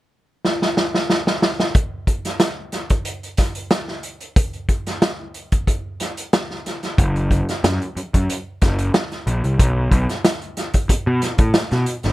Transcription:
0.45 snare
0.62 snare
0.77 snare
0.95 snare
1.10 snare
1.27 snare
1.42 snare
1.60 snare
1.75 kick, closed hi-hat
2.07 kick, closed hi-hat
2.25 snare, closed hi-hat
2.40 snare, closed hi-hat
2.72 snare, closed hi-hat
2.90 kick, closed hi-hat
3.05 closed hi-hat
3.23 closed hi-hat
3.37 kick, snare, closed hi-hat
3.55 closed hi-hat
3.71 snare, closed hi-hat
3.88 snare
4.03 closed hi-hat
4.21 closed hi-hat
4.36 kick, closed hi-hat
4.53 closed hi-hat
4.69 kick, closed hi-hat
4.87 snare, closed hi-hat
5.02 snare, closed hi-hat
5.34 closed hi-hat
5.52 kick, closed hi-hat
5.67 kick, closed hi-hat
6.00 snare, closed hi-hat
6.17 closed hi-hat
6.33 snare, closed hi-hat
6.51 snare
6.66 snare, closed hi-hat
6.83 snare, closed hi-hat
6.98 F#1, kick, closed hi-hat
7.16 closed hi-hat
7.31 kick, closed hi-hat
7.49 snare, closed hi-hat
7.64 F#2, snare, closed hi-hat
7.82 closed hi-hat
7.96 muted picked electric bass stroke, closed hi-hat
8.14 F#2, kick, closed hi-hat
8.30 closed hi-hat
8.62 F#1, kick, snare, closed hi-hat
8.79 closed hi-hat
8.94 snare, closed hi-hat
9.12 snare, closed hi-hat
9.27 A#1, closed hi-hat
9.44 C2, closed hi-hat
9.59 B1, kick, closed hi-hat
9.91 B1, kick, closed hi-hat
10.09 snare, closed hi-hat
10.24 snare, closed hi-hat
10.42 closed hi-hat
10.57 snare, closed hi-hat
10.74 kick, closed hi-hat
10.89 muted picked electric bass stroke, kick, closed hi-hat
11.07 B2
11.22 snare, closed hi-hat
11.38 A2, kick, closed hi-hat
11.54 snare, closed hi-hat
11.71 B2, snare, closed hi-hat
11.86 closed hi-hat
12.03 G1, snare, closed hi-hat

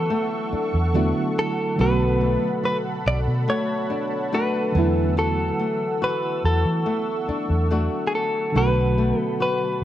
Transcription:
Already playing: D3 E3 F#3 A3 B3 E4 F#4 A4 F#5 C#6 E6
0.10 A3
0.52 D4, muted fingered electric bass stroke
0.74 E2
0.93 D3 F#3 A3 B3 D4 E4 F#4
1.39 A4
1.76 B1 B2 D3 F#3 A3 F#4 A5 B5
1.81 B3 F#4 B4
2.21 A3
2.63 F#4 B4
3.06 B1 D5
3.27 B2
3.48 A3 C#5
3.90 D4
4.32 A3 D4 F#4 B4
4.72 E2 D3 E3 F#3 A3 E6
4.77 B3 E4
5.17 E3 F#4 A4
5.59 A3
6.02 F#4 B4
6.44 E2 A4 C#6
6.65 E3
6.86 A3
7.29 D4, muted fingered electric bass stroke
7.50 E2
7.71 A3 D4 F#4
8.07 G#4
8.15 A4
8.52 B1 B2 D3 F#3 A3 F#4 A5 B5
8.57 B3 F#4 B4
8.98 A3
9.19 A4
9.40 F#4 B4

